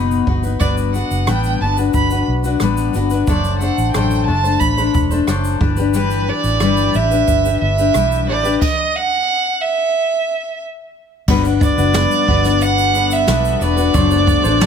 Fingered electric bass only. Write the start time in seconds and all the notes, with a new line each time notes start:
Already playing: F#1
0.27 G1
0.61 G1
1.11 F#1
1.27 A1
1.61 G1
1.94 G1
2.28 B1
2.61 A1
2.95 G1
3.27 F#1
3.78 A1
3.95 A1
4.28 F#1
4.61 A1
4.95 E1
5.27 F#1
5.61 G1
6.44 A1
6.60 G1
6.95 A1
7.28 G1
7.61 G1
7.95 B1
8.29 A1
11.28 G1
11.77 F#1
12.28 G1
13.27 B1
13.61 E1
13.94 F#1
14.44 A1